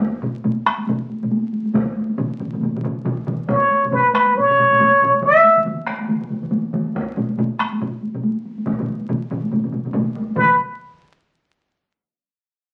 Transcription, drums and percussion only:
0.00 taiko, taiko high
0.22 taiko low-mid, taiko high
0.44 taiko low-mid, taiko high
0.66 taiko rim, taiko high
0.78 taiko high
0.87 taiko low-mid, taiko high
1.10 taiko high
1.23 taiko low-mid, taiko high
1.32 taiko high
1.53 taiko high
1.65 taiko high
1.74 taiko, taiko low-mid, taiko mid, taiko high
1.96 taiko high
2.09 taiko high
2.18 taiko low-mid, taiko mid, taiko high
2.40 taiko low-mid, taiko mid, taiko high
2.53 taiko low-mid, taiko mid, taiko high
2.61 taiko low-mid, taiko mid, taiko high
2.75 taiko low-mid, taiko mid
2.83 taiko low-mid, taiko mid, taiko high
2.97 taiko high
3.05 taiko, taiko low-mid, taiko mid, taiko high
3.27 taiko, taiko low-mid, taiko mid, taiko high
3.49 taiko, taiko low-mid, taiko high
3.70 taiko high
3.83 taiko low-mid, taiko high
3.91 taiko low-mid, taiko high
4.13 taiko rim, taiko high
4.26 taiko high
4.35 taiko low-mid, taiko high
4.49 taiko low-mid
4.57 taiko low-mid, taiko high
4.70 taiko low-mid, taiko high
4.79 taiko low-mid, taiko high
5.02 taiko low-mid
5.14 taiko high
5.22 taiko, taiko mid, taiko high
5.44 taiko high
5.56 taiko mid, taiko high
5.65 taiko mid, taiko high
5.86 taiko rim, taiko high
6.00 taiko high
6.09 taiko mid, taiko high
6.21 taiko mid
6.30 taiko mid, taiko high
6.43 taiko mid, taiko high
6.51 taiko mid, taiko high
6.73 taiko mid, taiko high
6.86 taiko high
6.95 taiko, taiko high
7.17 taiko low-mid, taiko high
7.29 taiko high
7.38 taiko low-mid, taiko high
7.60 taiko rim, taiko high
7.73 taiko high
7.80 taiko low-mid, taiko high
8.02 taiko high
8.15 taiko low-mid, taiko high
8.23 taiko high
8.45 taiko high
8.58 taiko high
8.66 taiko, taiko low-mid, taiko mid, taiko high
8.79 taiko low-mid, taiko mid
8.88 taiko high
9.01 taiko high
9.09 taiko low-mid, taiko mid, taiko high
9.31 taiko low-mid, taiko mid, taiko high
9.43 taiko high
9.52 taiko low-mid, taiko mid, taiko high
9.64 taiko low-mid, taiko mid
9.72 taiko low-mid, taiko mid, taiko high
9.85 taiko low-mid, taiko mid, taiko high
9.93 taiko, taiko low-mid, taiko mid, taiko high
10.16 taiko, taiko high
10.30 taiko high
10.36 taiko, taiko low-mid, taiko mid, taiko high

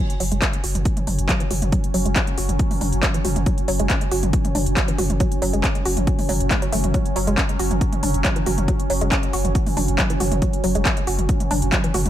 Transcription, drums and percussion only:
0.10 closed hi-hat
0.20 open hi-hat
0.32 closed hi-hat
0.42 kick, clap, closed hi-hat
0.53 closed hi-hat
0.64 open hi-hat
0.75 closed hi-hat, mid tom
0.85 kick, closed hi-hat
0.97 closed hi-hat, mid tom
1.07 mid tom, open hi-hat
1.19 closed hi-hat
1.29 kick, clap, closed hi-hat
1.40 closed hi-hat
1.51 mid tom, open hi-hat
1.62 closed hi-hat, mid tom
1.72 kick, closed hi-hat
1.84 closed hi-hat
1.94 open hi-hat
2.06 closed hi-hat
2.16 kick, clap, closed hi-hat
2.27 closed hi-hat
2.38 open hi-hat
2.49 closed hi-hat, mid tom
2.59 kick, closed hi-hat
2.71 mid tom, open hi-hat
2.81 mid tom, open hi-hat
2.93 closed hi-hat
3.03 kick, clap, closed hi-hat
3.14 closed hi-hat
3.25 mid tom, open hi-hat
3.36 closed hi-hat, mid tom
3.46 kick, closed hi-hat
3.58 closed hi-hat
3.68 open hi-hat
3.79 closed hi-hat
3.90 kick, clap, closed hi-hat
4.01 closed hi-hat
4.11 open hi-hat
4.23 closed hi-hat, mid tom
4.33 kick, closed hi-hat
4.45 closed hi-hat, mid tom
4.55 mid tom, open hi-hat
4.66 closed hi-hat
4.77 kick, clap, closed hi-hat
4.88 closed hi-hat
4.98 mid tom, open hi-hat
5.10 closed hi-hat, mid tom
5.20 kick, closed hi-hat
5.32 closed hi-hat
5.42 open hi-hat
5.53 closed hi-hat
5.64 kick, clap, closed hi-hat
5.75 closed hi-hat
5.85 open hi-hat
5.97 closed hi-hat, mid tom
6.07 kick, closed hi-hat
6.19 mid tom, open hi-hat
6.29 mid tom, open hi-hat
6.40 closed hi-hat
6.51 kick, clap, closed hi-hat
6.62 closed hi-hat
6.72 mid tom, open hi-hat
6.84 closed hi-hat, mid tom
6.94 kick, closed hi-hat
7.06 closed hi-hat
7.16 open hi-hat
7.27 closed hi-hat
7.38 kick, clap, closed hi-hat
7.49 closed hi-hat
7.59 open hi-hat
7.71 closed hi-hat, mid tom
7.81 kick, closed hi-hat
7.93 closed hi-hat, mid tom
8.03 mid tom, open hi-hat
8.14 closed hi-hat
8.25 kick, clap, closed hi-hat
8.36 closed hi-hat
8.46 mid tom, open hi-hat
8.58 closed hi-hat, mid tom
8.68 kick, closed hi-hat
8.80 closed hi-hat
8.90 open hi-hat
9.01 closed hi-hat
9.12 kick, clap, closed hi-hat
9.23 closed hi-hat
9.33 open hi-hat
9.45 closed hi-hat, mid tom
9.55 kick, closed hi-hat
9.66 mid tom, open hi-hat
9.77 mid tom, open hi-hat
9.88 closed hi-hat
9.99 kick, clap, closed hi-hat
10.10 closed hi-hat
10.20 mid tom, open hi-hat
10.32 closed hi-hat, mid tom
10.42 kick, closed hi-hat
10.53 closed hi-hat
10.64 open hi-hat
10.75 closed hi-hat
10.85 kick, clap, closed hi-hat
10.97 closed hi-hat
11.07 open hi-hat
11.19 closed hi-hat, mid tom
11.29 kick, closed hi-hat
11.40 closed hi-hat, mid tom
11.51 mid tom, open hi-hat
11.62 closed hi-hat
11.72 kick, clap, closed hi-hat
11.84 closed hi-hat
11.94 mid tom, open hi-hat
12.06 closed hi-hat, mid tom

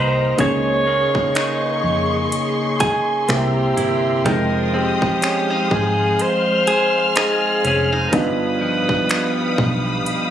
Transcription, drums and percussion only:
0.38 kick, closed hi-hat
1.15 kick
1.35 finger snap, closed hi-hat
2.32 closed hi-hat
2.80 kick, closed hi-hat
3.29 finger snap, closed hi-hat
3.78 closed hi-hat
4.26 kick, closed hi-hat
5.02 kick
5.22 finger snap, closed hi-hat
5.71 kick
6.19 closed hi-hat
6.67 closed hi-hat
7.16 finger snap, closed hi-hat
7.65 closed hi-hat
8.13 kick, closed hi-hat
8.89 kick
9.09 finger snap, closed hi-hat
9.58 kick
10.06 closed hi-hat

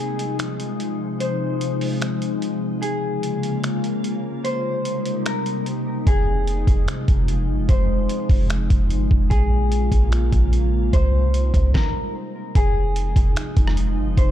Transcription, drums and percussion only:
0.19 closed hi-hat
0.39 finger snap, closed hi-hat
0.60 closed hi-hat
0.80 closed hi-hat
1.20 closed hi-hat
1.61 closed hi-hat
1.81 open hi-hat
2.02 finger snap, closed hi-hat
2.22 closed hi-hat
2.42 closed hi-hat
2.83 closed hi-hat
3.23 closed hi-hat
3.43 closed hi-hat
3.64 finger snap, closed hi-hat
3.84 closed hi-hat
4.04 closed hi-hat
4.45 closed hi-hat
4.85 closed hi-hat
5.06 closed hi-hat
5.26 finger snap, closed hi-hat
5.46 closed hi-hat
5.66 closed hi-hat
6.07 kick, closed hi-hat
6.47 closed hi-hat
6.67 kick, closed hi-hat
6.88 finger snap, closed hi-hat
7.08 kick, closed hi-hat
7.28 closed hi-hat
7.69 kick, closed hi-hat
8.09 closed hi-hat
8.29 kick, open hi-hat
8.50 finger snap, closed hi-hat
8.70 kick, closed hi-hat
8.90 closed hi-hat
9.11 kick
9.31 kick, closed hi-hat
9.72 closed hi-hat
9.92 kick, closed hi-hat
10.12 finger snap, closed hi-hat
10.32 kick, closed hi-hat
10.53 closed hi-hat
10.93 kick, closed hi-hat
11.34 closed hi-hat
11.54 kick, closed hi-hat
11.74 kick, snare
12.55 kick, closed hi-hat
12.96 closed hi-hat
13.16 kick, closed hi-hat
13.36 finger snap, closed hi-hat
13.57 kick, closed hi-hat
13.67 cross-stick
13.77 closed hi-hat
14.17 kick, closed hi-hat

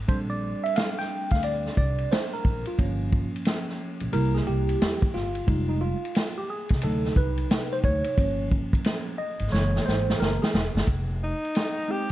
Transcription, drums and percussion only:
0.09 kick, ride
0.66 ride
0.76 snare, hi-hat pedal, ride
1.00 snare
1.30 kick, snare, ride
1.43 ride
1.66 snare
1.77 kick
1.98 ride
2.12 snare, hi-hat pedal, ride
2.45 kick
2.65 ride
2.79 kick, ride
3.12 kick
3.36 ride
3.45 snare, hi-hat pedal, ride
3.69 snare
4.00 ride
4.13 ride
4.36 snare
4.69 ride
4.82 snare, hi-hat pedal, ride
5.02 kick
5.16 snare
5.35 ride
5.48 kick, ride
6.05 ride
6.15 snare, hi-hat pedal, ride
6.69 kick, snare, ride
6.82 ride
7.05 snare
7.16 kick
7.38 ride
7.51 snare, hi-hat pedal, ride
7.84 kick
8.04 ride
8.18 kick, ride
8.51 kick
8.73 kick, ride
8.84 snare, hi-hat pedal, ride
9.39 ride
9.54 snare
9.76 snare
9.88 snare
10.10 snare
10.22 snare
10.43 snare
10.55 snare
10.77 snare
10.87 kick, ride
11.45 ride
11.55 snare, hi-hat pedal, ride

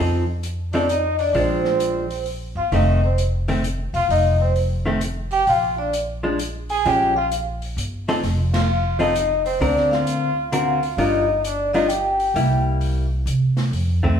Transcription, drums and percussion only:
0.43 closed hi-hat
0.73 open hi-hat
0.89 closed hi-hat
1.19 open hi-hat
1.34 open hi-hat
1.65 snare
1.80 closed hi-hat
2.10 open hi-hat
2.26 open hi-hat
2.72 open hi-hat
3.18 closed hi-hat
3.48 open hi-hat
3.64 closed hi-hat
3.94 open hi-hat
4.10 open hi-hat
4.56 open hi-hat
5.01 closed hi-hat
5.31 open hi-hat
5.47 open hi-hat
5.93 closed hi-hat
6.39 closed hi-hat
6.69 open hi-hat
6.85 open hi-hat
7.32 closed hi-hat
7.62 open hi-hat
7.78 closed hi-hat
8.08 snare, open hi-hat
8.23 snare, open hi-hat
8.54 snare, ride
9.00 open hi-hat
9.16 closed hi-hat
9.46 open hi-hat
9.61 open hi-hat
9.77 snare
9.92 snare
10.07 closed hi-hat
10.53 closed hi-hat
10.83 open hi-hat
10.98 open hi-hat
11.44 closed hi-hat
11.74 open hi-hat
11.89 closed hi-hat
12.20 open hi-hat
12.36 open hi-hat
12.81 open hi-hat
13.27 closed hi-hat
13.57 snare, open hi-hat
13.73 open hi-hat
14.03 kick

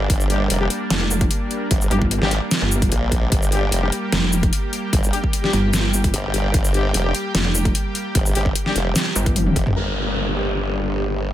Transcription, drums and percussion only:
0.10 kick, closed hi-hat
0.20 shaker
0.30 closed hi-hat
0.50 closed hi-hat
0.70 closed hi-hat
0.90 snare, closed hi-hat
1.11 shaker
1.21 kick, closed hi-hat
1.31 closed hi-hat
1.51 closed hi-hat
1.71 kick, closed hi-hat
1.81 shaker
1.91 closed hi-hat
2.02 kick
2.11 closed hi-hat
2.22 snare
2.31 closed hi-hat
2.51 snare, closed hi-hat, shaker
2.72 shaker
2.82 kick, closed hi-hat
2.92 closed hi-hat
3.12 kick, closed hi-hat
3.32 kick, closed hi-hat
3.42 shaker
3.52 closed hi-hat
3.72 closed hi-hat
3.92 closed hi-hat
4.12 snare, closed hi-hat
4.33 shaker
4.43 kick, closed hi-hat
4.53 closed hi-hat
4.73 closed hi-hat
4.93 kick, closed hi-hat
5.04 shaker
5.13 closed hi-hat
5.24 kick
5.33 closed hi-hat
5.44 snare
5.53 closed hi-hat
5.74 snare, closed hi-hat, shaker
5.94 shaker
6.04 kick, closed hi-hat
6.14 closed hi-hat
6.34 closed hi-hat
6.54 kick, closed hi-hat
6.65 shaker
6.74 closed hi-hat
6.94 closed hi-hat
7.15 closed hi-hat
7.35 snare, closed hi-hat
7.55 shaker
7.65 kick, closed hi-hat
7.75 closed hi-hat
7.95 closed hi-hat
8.15 kick, closed hi-hat
8.26 shaker
8.35 closed hi-hat
8.46 kick
8.55 closed hi-hat
8.66 snare
8.76 closed hi-hat
8.96 snare, closed hi-hat, shaker
9.16 shaker
9.26 kick, closed hi-hat
9.36 closed hi-hat, high tom
9.47 high tom
9.56 kick, closed hi-hat
9.67 mid tom
9.76 crash

